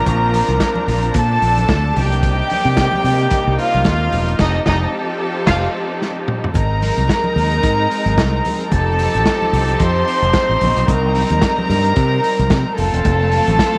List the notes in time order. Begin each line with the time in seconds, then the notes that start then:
Already playing: F3 D4 A#4 A#5
0.06 A#1 C4, kick, closed hi-hat, low conga
0.34 open hi-hat, high conga
0.48 C2, closed hi-hat, high conga
0.60 kick, snare, closed hi-hat, muted conga
0.75 high conga
0.88 A#1, open hi-hat, low conga
1.03 closed hi-hat
1.14 A#2 A4 A5, kick, closed hi-hat, muted conga
1.42 A#1, open hi-hat, muted conga
1.58 closed hi-hat, high conga
1.68 D2, kick, snare, closed hi-hat, muted conga
1.96 C2 C3 G3 A#3 D#4 G4 G5, open hi-hat, muted conga, high conga, low conga
2.12 closed hi-hat
2.23 kick, closed hi-hat, muted conga, low conga
2.50 open hi-hat, muted conga, high conga
2.65 C3, closed hi-hat, high conga
2.77 kick, snare, closed hi-hat, muted conga
2.93 high conga
3.04 C3, open hi-hat, muted conga, low conga
3.20 closed hi-hat
3.30 kick, closed hi-hat, muted conga
3.47 C2
3.58 F4 F5, open hi-hat
3.74 C2, closed hi-hat, high conga
3.84 D#2, kick, snare, closed hi-hat, muted conga
4.12 E1, open hi-hat, muted conga, high conga, low conga
4.28 closed hi-hat
4.39 F1 F3 C4 D#4 G4 A4 D#5, kick, snare, crash
4.66 F1 D#4 D#5, kick, snare
5.46 F1 F4 F5, kick, snare, crash
6.02 snare
6.28 mid tom
6.44 floor tom
6.54 G#1 G#3 C4 D#4 A#4 A#5, kick, closed hi-hat, muted conga, low conga
6.82 open hi-hat, muted conga, high conga
6.97 C2, closed hi-hat, high conga
7.08 kick, snare, closed hi-hat, muted conga
7.24 high conga
7.36 D#2, open hi-hat, low conga
7.51 closed hi-hat
7.63 G#2, kick, closed hi-hat
7.91 open hi-hat, muted conga
8.06 G#1, closed hi-hat, high conga
8.18 C2, kick, snare, closed hi-hat, muted conga
8.45 open hi-hat, high conga, low conga
8.60 closed hi-hat
8.71 F1 F3 D#4 G4 A4 A5, kick, closed hi-hat, muted conga, low conga
8.99 open hi-hat, muted conga, high conga
9.14 A1, closed hi-hat, high conga
9.26 kick, snare, closed hi-hat, muted conga
9.42 high conga
9.53 C2, open hi-hat, muted conga, low conga
9.68 closed hi-hat
9.79 F2 C5 C6, kick, closed hi-hat
10.08 open hi-hat
10.22 F1, closed hi-hat, high conga
10.33 kick, snare, closed hi-hat, muted conga
10.49 A1
10.61 A#1, open hi-hat, muted conga, high conga, low conga
10.77 B1, closed hi-hat
10.88 C2 G3 A#4 A#5, kick, closed hi-hat, low conga
11.15 open hi-hat, muted conga, high conga
11.30 D#2, closed hi-hat, high conga
11.42 kick, snare, closed hi-hat, muted conga
11.58 high conga
11.70 G2, open hi-hat, muted conga, low conga
11.84 closed hi-hat
11.96 C3, kick, closed hi-hat
12.24 open hi-hat, muted conga
12.39 C2, closed hi-hat, high conga
12.50 C3, kick, snare, closed hi-hat
12.77 F1 A3 F4 A4 A5, open hi-hat, muted conga, high conga, low conga
12.93 E1, closed hi-hat
13.05 F1, kick, closed hi-hat, low conga
13.32 open hi-hat, high conga
13.47 A1, closed hi-hat, high conga
13.59 kick, snare, closed hi-hat, muted conga